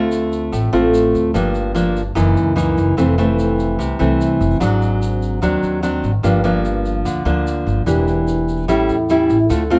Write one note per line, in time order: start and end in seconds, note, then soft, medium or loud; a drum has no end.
0.00 0.49 D2 medium
0.00 0.50 D3 medium
0.00 0.70 A3 medium
0.00 0.70 C4 soft
0.00 0.70 F4 medium
0.12 shaker medium
0.33 shaker soft
0.52 0.72 A1 medium
0.52 1.32 A2 medium
0.52 shaker medium
0.73 1.11 A1 medium
0.73 1.31 A3 medium
0.73 1.31 C4 medium
0.73 1.31 F4 medium
0.73 shaker soft
0.94 shaker medium
1.15 1.33 D2 medium
1.15 shaker soft
1.34 2.12 G1 medium
1.34 2.14 G2 medium
1.34 1.72 F3 soft
1.34 1.72 A#3 soft
1.34 1.72 D4 soft
1.34 shaker medium
1.55 shaker soft
1.75 2.01 F3 medium
1.75 2.01 A#3 medium
1.75 2.02 D4 medium
1.75 shaker medium
1.96 shaker soft
2.15 2.35 F#1 medium
2.15 2.95 F#2 medium
2.15 2.53 E3 medium
2.15 2.53 A#3 medium
2.15 2.54 D#4 medium
2.15 shaker medium
2.37 2.75 C#2 medium
2.37 shaker soft
2.56 2.95 E3 medium
2.56 2.96 A#3 medium
2.56 2.96 D#4 medium
2.56 shaker medium
2.78 2.96 F#1 medium
2.78 shaker soft
2.97 3.76 F1 medium
2.97 3.77 F2 soft
2.97 3.15 E3 medium
2.97 3.15 A3 medium
2.97 3.15 C4 medium
2.97 shaker medium
3.18 3.96 E3 medium
3.18 3.96 A3 medium
3.18 3.97 C4 medium
3.18 shaker soft
3.39 shaker medium
3.60 shaker soft
3.79 3.98 C2 medium
3.79 4.59 C3 medium
3.79 shaker medium
3.99 4.38 C2 medium
3.99 4.57 E3 medium
3.99 4.58 A3 medium
3.99 4.58 C4 medium
3.99 shaker soft
4.21 shaker medium
4.41 4.60 F1 medium
4.41 shaker soft
4.60 5.38 G#1 medium
4.60 5.40 G#2 soft
4.60 5.39 F#3 medium
4.60 5.39 C4 soft
4.60 5.39 D4 medium
4.60 shaker medium
4.82 shaker soft
5.02 shaker medium
5.22 shaker soft
5.42 5.62 D#2 medium
5.42 6.22 D#3 medium
5.42 5.80 F#3 medium
5.42 5.80 C4 medium
5.42 5.80 D4 medium
5.42 shaker medium
5.63 6.01 D#2 medium
5.63 shaker soft
5.83 6.10 F#3 medium
5.83 6.11 C4 soft
5.83 6.11 D4 medium
5.83 shaker medium
6.04 6.23 G#1 medium
6.04 shaker soft
6.23 7.02 G1 medium
6.23 7.03 G2 medium
6.23 6.41 F3 medium
6.23 6.41 A#3 medium
6.23 6.41 D4 medium
6.23 shaker medium
6.44 7.22 F3 medium
6.44 7.23 A#3 medium
6.44 7.23 D4 medium
6.44 shaker soft
6.65 shaker medium
6.85 shaker soft
7.05 7.24 D2 medium
7.05 7.85 D3 medium
7.05 shaker medium
7.25 7.63 D2 medium
7.25 7.83 F3 medium
7.25 7.84 A#3 medium
7.25 7.84 D4 medium
7.25 shaker soft
7.47 shaker medium
7.67 7.86 G1 medium
7.67 shaker soft
7.86 8.64 E1 medium
7.86 8.66 E3 soft
7.86 8.65 A#3 soft
7.86 8.65 D4 medium
7.86 8.65 G4 medium
7.86 shaker medium
8.08 shaker soft
8.28 shaker medium
8.48 shaker soft
8.68 8.87 A1 medium
8.68 9.48 A2 medium
8.68 8.95 G3 medium
8.68 8.95 C#4 medium
8.68 8.95 E4 medium
8.68 shaker medium
8.89 9.27 E2 medium
8.89 shaker soft
9.10 9.37 G3 medium
9.10 9.37 C#4 medium
9.10 9.37 E4 medium
9.10 shaker medium
9.30 9.49 A1 medium
9.30 shaker soft
9.50 9.79 D2 medium
9.50 9.79 D3 soft
9.50 9.62 A3 medium
9.50 9.62 C4 soft
9.50 9.62 F4 medium
9.50 shaker medium
9.70 9.79 A3 medium
9.70 9.79 C4 medium
9.70 9.79 F4 medium
9.70 shaker soft